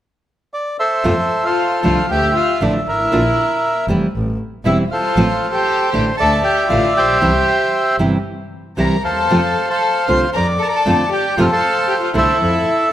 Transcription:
0.54 bandoneon D5
0.79 bandoneon A4 C5 E5
1.04 double bass F2, nylon-string guitar C3 F3 A3 C4 F4
1.44 violin section F4, bandoneon A4 C5 F5
1.83 double bass C2, nylon-string guitar D3 F3 A3 D4 E4, violin section F4, bandoneon F5
2.09 double bass D2, violin section G4, bandoneon E5 G5
2.36 violin section F4, bandoneon F5
2.61 double bass A1, nylon-string guitar D3 F3 A3 D4 E4, violin section D4, bandoneon D5
2.87 double bass G#1, violin section E4, bandoneon A#4 E5
3.12 double bass A#1, nylon-string guitar D3 A#3 D4 F4
3.88 double bass F1, nylon-string guitar E3 G3 C4 E4
4.14 double bass A1
4.65 double bass E1, nylon-string guitar E3 G3 C4 E4, violin section E4, bandoneon E5
4.90 violin section F4, bandoneon A4 C5 F5
5.17 double bass A1, nylon-string guitar F3 A3 C4 F4
5.53 violin section G4, bandoneon C5 G5
5.91 double bass A1, nylon-string guitar D3 A3 D4 E4, violin section G4, bandoneon G5
6.17 double bass D2, violin section A4, bandoneon D5 E5 A5
6.43 violin section G4, bandoneon G5
6.69 double bass A1, nylon-string guitar D3 A3 D4 E4, violin section F4, bandoneon F5
6.95 double bass A#1, violin section G4, bandoneon C5 E5 G5
7.21 double bass C2, nylon-string guitar C3 E3 G3 C4 E4
7.98 double bass G1, nylon-string guitar C3 E3 G3 C4 E4
8.77 double bass C2, nylon-string guitar C3 E3 G3 C4 E4, violin section A#4, bandoneon A#5
9.05 double bass D#2, violin section A4, bandoneon C5 F5 A5
9.30 double bass F2, nylon-string guitar C3 F3 A3 C4 F4
9.70 violin section A4, bandoneon C5 F5 A5
10.07 double bass C2, nylon-string guitar D3 A3 C4 F4, violin section C5, bandoneon C6
10.33 double bass F2, violin section A#4, bandoneon D5 A#5
10.59 violin section A4, bandoneon A5
10.65 violin section A#4, bandoneon A#5
10.72 violin section A4, bandoneon A5
10.86 double bass F2, nylon-string guitar D3 A3 C4 F4
11.11 violin section G4, bandoneon G5
11.37 double bass F2, nylon-string guitar C3 F3 A3 C4 F4, violin section F4, bandoneon A4 C5 F5
11.50 violin section A4, bandoneon C5 F5 A5
11.87 violin section G4, bandoneon G5
12.01 violin section F4, bandoneon F5
12.13 double bass C2, nylon-string guitar D3 A3 D4 E4, violin section E4
12.18 bandoneon A4 E5
12.40 double bass F2

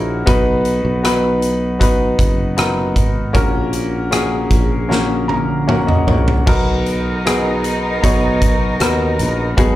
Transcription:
Already playing: fretless electric bass A#1, grand piano A#3 D#4 E4 F#4 A#4 C#5
0.26 fretless electric bass B1, grand piano B3 D#4 F#4 B4, kick, closed hi-hat
0.65 closed hi-hat
0.85 fretless electric bass B1
1.03 grand piano B3 D#4 F#4 B4, cross-stick, closed hi-hat
1.42 closed hi-hat
1.79 grand piano B3 D#4 F#4 B4, kick, closed hi-hat
2.19 fretless electric bass F#1, kick, closed hi-hat
2.57 grand piano B3 D#4 F#4 A#4, cross-stick, closed hi-hat
2.96 fretless electric bass G#1, kick, closed hi-hat
3.33 fretless electric bass A#1, grand piano A#2 A#3 C#4 F#4 A#4, kick, closed hi-hat
3.73 closed hi-hat
4.11 grand piano A#3 C#4 F#4 G#4, cross-stick, closed hi-hat
4.50 fretless electric bass A#1, kick, closed hi-hat
4.89 grand piano A#3 C#4 F#4 A#4, snare
5.28 grand piano A#5, high tom
5.67 grand piano A#3 C#4 F#4 A#4 F#5, mid tom
5.87 grand piano D#5, mid tom
6.07 fretless electric bass A#1, grand piano C#5, floor tom
6.28 floor tom
6.46 fretless electric bass B1, grand piano B3 D#4 F#4 A#4, string section B3 D#4 A#4, kick, crash
6.86 closed hi-hat
7.25 grand piano B3 D#4 F#4 G#4, cross-stick, closed hi-hat
7.64 closed hi-hat
8.02 fretless electric bass B1, grand piano B3 D#4 F#4 C#5, kick, closed hi-hat
8.42 kick, closed hi-hat
8.80 fretless electric bass D#2, grand piano B3 D#4 F#4 A#4, cross-stick, closed hi-hat
9.19 fretless electric bass A#1, closed hi-hat
9.57 fretless electric bass B1, grand piano B2 B3 D#4 F#4 G#4, string section G#3 B3 F#4, kick, closed hi-hat

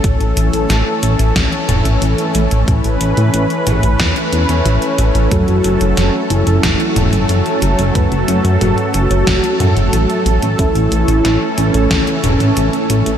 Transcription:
Already playing: analog synth pad C#4 A4
0.04 analog synth bass A1, analog synth pad E3 A3, kick, closed hi-hat
0.20 analog synth bass A1, closed hi-hat
0.37 analog synth bass A1, closed hi-hat
0.53 analog synth bass A1, closed hi-hat
0.70 analog synth bass A1, snare, closed hi-hat
1.03 analog synth bass A1, closed hi-hat
1.19 analog synth bass A1, closed hi-hat
1.36 analog synth bass A1, kick, snare, closed hi-hat
1.52 closed hi-hat
1.69 analog synth bass E1, closed hi-hat, mid tom
1.85 analog synth bass A1, closed hi-hat
2.02 analog synth bass A1, closed hi-hat
2.18 closed hi-hat
2.35 analog synth bass A1, closed hi-hat
2.51 analog synth bass A1, closed hi-hat
2.68 analog synth bass A1, analog synth pad B4, kick, closed hi-hat
2.84 analog synth bass A1, closed hi-hat
3.01 analog synth bass A1, closed hi-hat
3.17 analog synth bass A2, closed hi-hat
3.34 analog synth bass A1, closed hi-hat
3.50 closed hi-hat
3.67 analog synth bass A1, closed hi-hat, mid tom
3.83 analog synth bass A1, closed hi-hat
4.00 analog synth bass E2, kick, snare, closed hi-hat
4.16 closed hi-hat
4.33 analog synth bass E2, closed hi-hat
4.49 analog synth bass E2, closed hi-hat
4.66 analog synth bass A1, closed hi-hat
4.82 closed hi-hat
4.98 analog synth bass A1, closed hi-hat
5.15 analog synth bass A1, closed hi-hat
5.31 analog synth bass F#1, fm electric piano F#3 A3 C#4 A4, analog synth pad F#3 A4, soft synth lead F#4, kick, closed hi-hat
5.48 analog synth bass F#1, closed hi-hat
5.64 analog synth bass F#1, closed hi-hat
5.81 analog synth bass F#1, closed hi-hat
5.97 analog synth bass F#1, snare, closed hi-hat
6.30 analog synth bass F#1, soft synth lead E4, closed hi-hat
6.47 analog synth bass F#1, fm electric piano F#3 A3 C#4 A4, closed hi-hat
6.63 analog synth bass F#1, kick, snare, closed hi-hat
6.80 closed hi-hat
6.96 analog synth bass E1, closed hi-hat, mid tom
7.13 analog synth bass F#1, closed hi-hat
7.29 analog synth bass F#1, closed hi-hat
7.46 closed hi-hat
7.62 analog synth bass F#1, closed hi-hat
7.79 analog synth bass F#1, closed hi-hat
7.95 analog synth bass F#1, fm electric piano F#3 A3 C#4 B4, kick, closed hi-hat
8.12 analog synth bass F#1, closed hi-hat
8.28 analog synth bass F#1, closed hi-hat
8.45 analog synth bass F#2, closed hi-hat
8.61 analog synth bass F#1, soft synth lead F#4, closed hi-hat, mid tom
8.78 closed hi-hat
8.94 analog synth bass F#1, closed hi-hat
9.11 analog synth bass F#1, fm electric piano F#3 A3 C#4 C#5, closed hi-hat
9.27 analog synth bass F#1, kick, snare, closed hi-hat
9.44 closed hi-hat
9.60 analog synth bass F#2, closed hi-hat, mid tom
9.77 analog synth bass F#1, closed hi-hat
9.93 analog synth bass A1, closed hi-hat
10.10 closed hi-hat
10.26 analog synth bass A1, closed hi-hat
10.42 analog synth bass A1, closed hi-hat
10.59 analog synth bass A1, fm electric piano E3 A3 C#4 A4, analog synth pad E3 C#4, soft synth lead E4, kick, closed hi-hat
10.75 analog synth bass A1, closed hi-hat
10.92 analog synth bass A1, closed hi-hat
11.08 analog synth bass A1, closed hi-hat
11.25 analog synth bass A1, snare, closed hi-hat
11.58 analog synth bass A1, soft synth lead C#4, closed hi-hat
11.74 analog synth bass A1, fm electric piano E3 A3 C#4 A4, closed hi-hat
11.91 analog synth bass A1, kick, snare, closed hi-hat
12.07 closed hi-hat
12.24 analog synth bass E1, closed hi-hat, mid tom
12.40 analog synth bass A1, closed hi-hat
12.57 analog synth bass A1, closed hi-hat
12.73 closed hi-hat
12.90 analog synth bass A1, closed hi-hat
13.06 analog synth bass A1, closed hi-hat

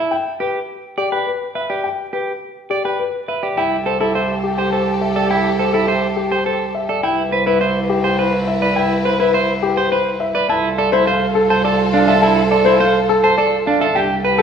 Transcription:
Already playing: clean electric guitar E4, grand piano E5
0.11 grand piano G5
0.40 clean electric guitar G4, grand piano B4
0.98 grand piano G4, clean electric guitar D5
1.12 clean electric guitar B4, grand piano G5
1.27 grand piano B4
1.55 clean electric guitar B4, grand piano E5
1.70 clean electric guitar G4, grand piano D5
1.84 grand piano G5
2.13 clean electric guitar G4, grand piano B4
2.70 grand piano G4, clean electric guitar D5
2.85 clean electric guitar B4, grand piano G5
3.00 grand piano B4
3.28 clean electric guitar B4, grand piano E5
3.43 clean electric guitar G4, grand piano D5
3.57 cello C2, clean electric guitar E4, violin section G4 A4, french horn G4, grand piano G5
3.86 clean electric guitar A4, grand piano C5
4.00 clean electric guitar E4, grand piano A4
4.15 clean electric guitar C5, grand piano E5
4.43 grand piano G4
4.58 clean electric guitar C5, grand piano G5
4.72 clean electric guitar A4, grand piano C5
5.01 grand piano E5
5.15 clean electric guitar A4, grand piano D5
5.30 clean electric guitar E4, grand piano G5
5.59 clean electric guitar A4, grand piano C5
5.73 clean electric guitar E4, grand piano A4
5.87 clean electric guitar C5, grand piano E5
6.17 grand piano G4
6.31 clean electric guitar C5, grand piano G5
6.46 clean electric guitar A4, grand piano C5
6.75 grand piano E5
6.89 clean electric guitar A4, grand piano D5
7.03 cello C2, violin section E4 B4, clean electric guitar E4, french horn B4, grand piano G5
7.32 clean electric guitar B4, grand piano C5
7.46 clean electric guitar E4, grand piano B4
7.61 clean electric guitar C5, grand piano E5
7.89 grand piano G4
8.04 clean electric guitar C5, grand piano G5
8.19 clean electric guitar B4, grand piano C5
8.47 grand piano E5
8.62 clean electric guitar B4, grand piano D5
8.76 clean electric guitar E4, grand piano G5
9.05 clean electric guitar B4, grand piano C5
9.20 clean electric guitar E4, grand piano B4
9.34 clean electric guitar C5, grand piano E5
9.63 grand piano G4
9.77 clean electric guitar C5, grand piano G5
9.91 clean electric guitar B4, grand piano C5
10.20 grand piano E5
10.35 clean electric guitar B4, grand piano D5
10.49 cello C2, clean electric guitar E4, violin section F4 A4, french horn A4, grand piano A5
10.78 clean electric guitar A4, grand piano D5
10.92 clean electric guitar E4, grand piano C5
11.06 clean electric guitar C5, grand piano F5
11.35 grand piano A4
11.50 clean electric guitar C5, grand piano A5
11.64 clean electric guitar A4, grand piano D5
11.93 clean electric guitar D4, grand piano F5
12.07 clean electric guitar A4, grand piano E5
12.22 clean electric guitar E4, grand piano A5
12.51 clean electric guitar A4, grand piano D5
12.65 clean electric guitar E4, grand piano C5
12.80 clean electric guitar C5, grand piano F5
13.09 grand piano A4
13.24 clean electric guitar C5, grand piano A5
13.38 clean electric guitar A4, grand piano D5
13.66 clean electric guitar D4, grand piano F5
13.80 clean electric guitar A4, grand piano E5
13.95 cello C2, french horn G4, violin section G4 A4, clean electric guitar G4, grand piano G5
14.24 grand piano B4, clean electric guitar B4
14.38 clean electric guitar G4, grand piano A4

